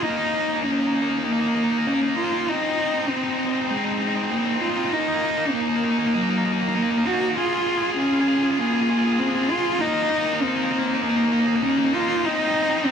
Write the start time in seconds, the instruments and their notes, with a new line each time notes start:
0.03 distorted electric guitar A#3 D#4, cello D#4
0.10 distorted electric guitar A#3 D#4
0.17 distorted electric guitar A#3 D#4
0.24 distorted electric guitar A#3 D#4
0.34 distorted electric guitar A#3 D#4
0.41 distorted electric guitar A#3 D#4
0.49 distorted electric guitar A#3 D#4
0.56 distorted electric guitar A#3 D#4
0.63 distorted electric guitar A#3 D#4, cello C#4
0.71 distorted electric guitar A#3 D#4
0.79 distorted electric guitar A#3 D#4
0.87 distorted electric guitar A#3 D#4
0.94 distorted electric guitar A#3 D#4
1.02 distorted electric guitar A#3 D#4
1.09 distorted electric guitar A#3 D#4
1.18 distorted electric guitar A#3 D#4
1.24 distorted electric guitar A#3 D#4, cello A#3
1.32 distorted electric guitar A#3 D#4
1.40 distorted electric guitar A#3 D#4
1.47 distorted electric guitar A#3 D#4
1.55 distorted electric guitar A#3 D#4
1.63 distorted electric guitar A#3 D#4
1.71 distorted electric guitar A#3 D#4
1.79 distorted electric guitar A#3 D#4
1.86 distorted electric guitar A#3 D#4, cello C#4
1.94 distorted electric guitar A#3 D#4
2.01 distorted electric guitar A#3 D#4
2.09 distorted electric guitar A#3 D#4
2.16 distorted electric guitar A#3 D#4, cello F4
2.24 distorted electric guitar A#3 D#4
2.32 distorted electric guitar A#3 D#4
2.40 distorted electric guitar A#3 D#4
2.48 distorted electric guitar C4 D#4, cello D#4
2.56 distorted electric guitar C4 D#4
2.63 distorted electric guitar C4 D#4
2.70 distorted electric guitar C4 D#4
2.78 distorted electric guitar C4 D#4
2.86 distorted electric guitar C4 D#4
2.94 distorted electric guitar C4 D#4
3.01 distorted electric guitar C4 D#4
3.09 cello C4, distorted electric guitar C4 D#4
3.16 distorted electric guitar C4 D#4
3.24 distorted electric guitar C4 D#4
3.31 distorted electric guitar C4 D#4
3.39 distorted electric guitar C4 D#4
3.46 distorted electric guitar C4 D#4
3.54 distorted electric guitar C4 D#4
3.62 distorted electric guitar C4 D#4
3.69 cello G#3, distorted electric guitar C4 D#4
3.77 distorted electric guitar C4 D#4
3.85 distorted electric guitar C4 D#4
3.92 distorted electric guitar C4 D#4
4.00 distorted electric guitar C4 D#4
4.07 distorted electric guitar C4 D#4
4.15 distorted electric guitar C4 D#4
4.23 distorted electric guitar C4 D#4
4.31 cello A#3, distorted electric guitar C4 D#4
4.38 distorted electric guitar C4 D#4
4.45 distorted electric guitar C4 D#4
4.53 distorted electric guitar C4 D#4
4.61 distorted electric guitar C4 D#4, cello F4
4.69 distorted electric guitar C4 D#4
4.76 distorted electric guitar C4 D#4
4.84 distorted electric guitar C4 D#4
4.92 distorted electric guitar A#3 D#4, cello D#4
4.99 distorted electric guitar A#3 D#4
5.08 distorted electric guitar A#3 D#4
5.14 distorted electric guitar A#3 D#4
5.22 distorted electric guitar A#3 D#4
5.30 distorted electric guitar A#3 D#4
5.37 distorted electric guitar A#3 D#4
5.46 distorted electric guitar A#3 D#4
5.53 cello A#3, distorted electric guitar A#3 D#4
5.61 distorted electric guitar A#3 D#4
5.68 distorted electric guitar A#3 D#4
5.76 distorted electric guitar A#3 D#4
5.84 distorted electric guitar A#3 D#4
5.91 distorted electric guitar A#3 D#4
5.98 distorted electric guitar A#3 D#4
6.06 distorted electric guitar A#3 D#4
6.14 cello F#3, distorted electric guitar A#3 D#4
6.22 distorted electric guitar A#3 D#4
6.30 distorted electric guitar A#3 D#4
6.37 distorted electric guitar A#3 D#4
6.45 distorted electric guitar A#3 D#4
6.52 distorted electric guitar A#3 D#4
6.60 distorted electric guitar A#3 D#4
6.68 distorted electric guitar A#3 D#4
6.75 distorted electric guitar A#3 D#4, cello A#3
6.83 distorted electric guitar A#3 D#4
6.91 distorted electric guitar A#3 D#4
6.98 distorted electric guitar A#3 D#4
7.06 distorted electric guitar A#3 D#4, cello F#4
7.13 distorted electric guitar A#3 D#4
7.21 distorted electric guitar A#3 D#4
7.29 distorted electric guitar A#3 D#4
7.37 distorted electric guitar F4 G#4, cello F4
7.45 distorted electric guitar F4 G#4
7.52 distorted electric guitar F4 G#4
7.60 distorted electric guitar F4 G#4
7.67 distorted electric guitar F4 G#4
7.75 distorted electric guitar F4 G#4
7.82 distorted electric guitar F4 G#4
7.90 distorted electric guitar F4 G#4
7.97 cello C#4, distorted electric guitar F4 G#4
8.05 distorted electric guitar F4 G#4
8.13 distorted electric guitar F4 G#4
8.21 distorted electric guitar F4 G#4
8.28 distorted electric guitar F4 G#4
8.35 distorted electric guitar F4 G#4
8.43 distorted electric guitar F4 G#4
8.51 distorted electric guitar F4 G#4
8.59 cello A#3, distorted electric guitar F4 G#4
8.66 distorted electric guitar F4 G#4
8.74 distorted electric guitar F4 G#4
8.82 distorted electric guitar F4 G#4
8.89 distorted electric guitar F4 G#4
8.98 distorted electric guitar F4 G#4
9.04 distorted electric guitar F4 G#4
9.13 distorted electric guitar F4 G#4
9.19 cello C4, distorted electric guitar F4 G#4
9.27 distorted electric guitar F4 G#4
9.35 distorted electric guitar F4 G#4
9.43 distorted electric guitar F4 G#4
9.50 cello F4, distorted electric guitar F4 G#4
9.58 distorted electric guitar F4 G#4
9.66 distorted electric guitar F4 G#4
9.73 distorted electric guitar F4 G#4
9.80 distorted electric guitar A#3 D#4, cello D#4
9.88 distorted electric guitar A#3 D#4
9.94 distorted electric guitar A#3 D#4
10.03 distorted electric guitar A#3 D#4
10.10 distorted electric guitar A#3 D#4
10.18 distorted electric guitar A#3 D#4
10.25 distorted electric guitar A#3 D#4
10.33 distorted electric guitar A#3 D#4
10.41 distorted electric guitar A#3 D#4, cello C4
10.48 distorted electric guitar A#3 D#4
10.56 distorted electric guitar A#3 D#4
10.64 distorted electric guitar A#3 D#4
10.71 distorted electric guitar A#3 D#4
10.79 distorted electric guitar A#3 D#4
10.87 distorted electric guitar A#3 D#4
10.94 distorted electric guitar A#3 D#4
11.02 cello A#3, distorted electric guitar A#3 D#4
11.09 distorted electric guitar A#3 D#4
11.17 distorted electric guitar A#3 D#4
11.25 distorted electric guitar A#3 D#4
11.32 distorted electric guitar A#3 D#4
11.40 distorted electric guitar A#3 D#4
11.46 distorted electric guitar A#3 D#4
11.56 distorted electric guitar A#3 D#4
11.63 distorted electric guitar A#3 D#4, cello C#4
11.70 distorted electric guitar A#3 D#4
11.78 distorted electric guitar A#3 D#4
11.85 distorted electric guitar A#3 D#4
11.94 distorted electric guitar A#3 D#4, cello F4
12.00 distorted electric guitar A#3 D#4
12.08 distorted electric guitar A#3 D#4
12.17 distorted electric guitar A#3 D#4
12.24 distorted electric guitar C4 D#4, cello D#4
12.32 distorted electric guitar C4 D#4
12.40 distorted electric guitar C4 D#4
12.48 distorted electric guitar C4 D#4
12.54 distorted electric guitar C4 D#4
12.62 distorted electric guitar C4 D#4
12.70 distorted electric guitar C4 D#4
12.78 distorted electric guitar C4 D#4
12.85 distorted electric guitar C4 D#4, cello C4